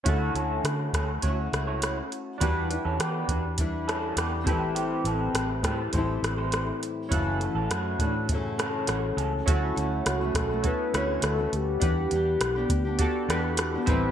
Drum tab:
HH |xxxxxxxx|xxxxxxxx|xxxxxxxx|xxxxxxxx|
SD |--rr-rr-|--r--rr-|--rr-rr-|--r--rr-|
BD |o--oo---|o--oo--o|---oo---|o--oo---|

HH |xxxxxxxx|xxxxxxxx|
SD |--rr-rr-|--r--rr-|
BD |o--oo---|o--oo--o|